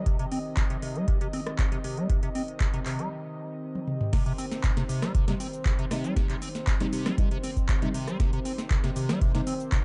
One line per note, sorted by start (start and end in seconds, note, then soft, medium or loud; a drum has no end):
0.00 4.09 D#3 medium
0.00 4.09 C4 medium
0.00 4.09 G4 medium
0.00 4.12 D#5 medium
0.06 0.17 C3 medium
0.06 kick loud
0.06 closed hi-hat medium
0.19 0.26 C3 loud
0.19 closed hi-hat medium
0.32 0.39 C4 medium
0.32 open hi-hat loud
0.57 0.64 C3 medium
0.57 kick loud
0.57 clap loud
0.57 closed hi-hat medium
0.70 0.77 C3 loud
0.70 closed hi-hat medium
0.82 0.97 C3 medium
0.82 open hi-hat loud
0.96 1.06 G3 loud
0.96 closed hi-hat soft
1.08 1.19 C3 medium
1.08 kick loud
1.08 closed hi-hat medium
1.21 1.28 C3 loud
1.21 closed hi-hat medium
1.33 1.41 C4 medium
1.33 open hi-hat loud
1.47 cross-stick medium
1.47 closed hi-hat soft
1.59 1.66 C3 medium
1.59 kick loud
1.59 clap loud
1.59 closed hi-hat medium
1.72 1.79 C3 loud
1.72 closed hi-hat medium
1.84 1.99 C3 medium
1.84 open hi-hat loud
1.97 2.07 G3 loud
1.97 closed hi-hat soft
2.10 2.20 C3 medium
2.10 kick loud
2.10 closed hi-hat medium
2.23 2.29 C3 loud
2.23 closed hi-hat medium
2.35 2.42 C4 medium
2.35 open hi-hat loud
2.48 closed hi-hat soft
2.60 2.68 C3 medium
2.60 kick loud
2.60 clap loud
2.60 closed hi-hat medium
2.74 2.80 C3 loud
2.74 closed hi-hat medium
2.86 3.00 C3 medium
2.86 clap medium
2.86 open hi-hat loud
2.99 3.09 G3 loud
2.99 closed hi-hat soft
3.75 high tom soft
3.88 mid tom medium
4.01 mid tom medium
4.13 4.24 C3 medium
4.13 9.85 D#3 medium
4.13 9.85 C4 medium
4.13 9.85 G4 medium
4.13 9.85 C5 loud
4.13 kick loud
4.13 snare medium
4.13 closed hi-hat medium
4.13 crash loud
4.13 shaker soft
4.26 4.33 C3 loud
4.26 closed hi-hat medium
4.38 4.46 C4 medium
4.38 open hi-hat loud
4.38 shaker medium
4.52 snare medium
4.52 closed hi-hat soft
4.52 shaker soft
4.64 4.71 C3 medium
4.64 kick loud
4.64 clap loud
4.64 closed hi-hat medium
4.64 shaker soft
4.77 4.84 C3 loud
4.77 snare medium
4.77 closed hi-hat medium
4.89 5.04 C3 medium
4.89 open hi-hat loud
4.89 shaker medium
5.02 5.12 G3 loud
5.02 cross-stick medium
5.02 snare medium
5.02 closed hi-hat soft
5.02 shaker soft
5.15 5.26 C3 medium
5.15 kick loud
5.15 closed hi-hat medium
5.15 shaker soft
5.28 5.35 C3 loud
5.28 5.34 G3 medium
5.28 5.34 C4 medium
5.28 5.34 D#4 medium
5.28 snare medium
5.28 closed hi-hat medium
5.40 5.47 C4 medium
5.40 open hi-hat loud
5.40 shaker medium
5.53 closed hi-hat soft
5.53 shaker soft
5.65 5.73 C3 medium
5.65 kick loud
5.65 clap loud
5.65 closed hi-hat medium
5.65 shaker soft
5.79 5.85 C3 loud
5.79 closed hi-hat medium
5.91 6.06 C3 medium
5.91 6.77 G3 medium
5.91 6.77 C4 medium
5.91 6.77 D#4 loud
5.91 cross-stick medium
5.91 snare medium
5.91 open hi-hat loud
5.91 shaker medium
6.04 6.14 G3 loud
6.04 closed hi-hat soft
6.04 shaker soft
6.16 6.27 C3 medium
6.16 kick loud
6.16 snare medium
6.16 closed hi-hat medium
6.16 shaker soft
6.29 6.36 C3 loud
6.29 clap soft
6.29 closed hi-hat medium
6.42 6.49 C4 medium
6.42 open hi-hat loud
6.42 shaker medium
6.55 snare medium
6.55 closed hi-hat soft
6.55 shaker soft
6.67 6.74 C3 medium
6.67 kick loud
6.67 clap loud
6.67 closed hi-hat medium
6.67 shaker soft
6.80 6.87 C3 loud
6.80 7.03 G3 medium
6.80 7.03 C4 medium
6.80 7.03 D#4 loud
6.80 snare medium
6.80 closed hi-hat medium
6.93 7.07 C3 medium
6.93 open hi-hat loud
6.93 shaker medium
7.06 7.16 G3 loud
7.06 7.16 G3 medium
7.06 7.16 C4 medium
7.06 7.16 D4 medium
7.06 cross-stick medium
7.06 snare medium
7.06 closed hi-hat soft
7.06 shaker soft
7.18 7.29 C3 medium
7.18 7.29 G3 medium
7.18 7.29 C4 medium
7.18 7.29 D#4 medium
7.18 kick loud
7.18 closed hi-hat medium
7.18 shaker soft
7.31 7.38 C3 loud
7.31 closed hi-hat medium
7.43 7.51 C4 medium
7.43 open hi-hat loud
7.43 shaker medium
7.57 kick medium
7.57 closed hi-hat soft
7.57 shaker soft
7.69 7.76 C3 medium
7.69 kick loud
7.69 clap loud
7.69 closed hi-hat medium
7.69 shaker soft
7.82 7.89 C3 loud
7.82 7.88 G3 medium
7.82 7.88 C4 medium
7.82 7.88 D#4 loud
7.82 closed hi-hat medium
7.94 8.09 C3 medium
7.94 open hi-hat loud
7.94 shaker medium
8.08 8.18 G3 loud
8.08 cross-stick medium
8.08 closed hi-hat soft
8.08 shaker soft
8.20 8.31 C3 medium
8.20 kick loud
8.20 snare medium
8.20 closed hi-hat medium
8.20 shaker soft
8.33 8.40 C3 loud
8.33 closed hi-hat medium
8.45 8.52 C4 medium
8.45 open hi-hat loud
8.45 shaker medium
8.58 snare medium
8.58 closed hi-hat soft
8.58 shaker soft
8.71 8.78 C3 medium
8.71 kick loud
8.71 clap loud
8.71 closed hi-hat medium
8.71 shaker soft
8.84 8.91 C3 loud
8.84 snare medium
8.84 closed hi-hat medium
8.96 9.11 C3 medium
8.96 open hi-hat loud
8.96 shaker medium
9.09 9.19 G3 loud
9.09 cross-stick medium
9.09 snare medium
9.09 closed hi-hat soft
9.09 shaker soft
9.21 9.32 C3 medium
9.21 kick loud
9.21 closed hi-hat medium
9.21 shaker soft
9.35 9.41 C3 loud
9.35 9.41 G3 medium
9.35 9.41 C4 medium
9.35 9.41 D#4 medium
9.35 snare medium
9.35 closed hi-hat medium
9.47 9.54 C4 medium
9.47 open hi-hat loud
9.47 shaker medium
9.60 closed hi-hat soft
9.60 shaker soft
9.72 9.80 C3 medium
9.72 kick loud
9.72 clap loud
9.72 closed hi-hat medium
9.72 shaker soft